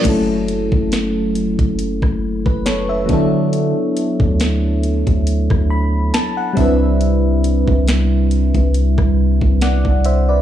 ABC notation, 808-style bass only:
X:1
M:4/4
L:1/16
Q:"Swing 16ths" 1/4=69
K:F#phr
V:1 name="808-style bass" clef=bass
F,,,3 F,,,4 F,,,2 F,,,2 F,,,3 D,2- | D, z2 D,,4 D,,2 D,,3 z2 =C,,2- | =C,,3 C,,4 C,,2 C,,2 C,,2 C,,3 |]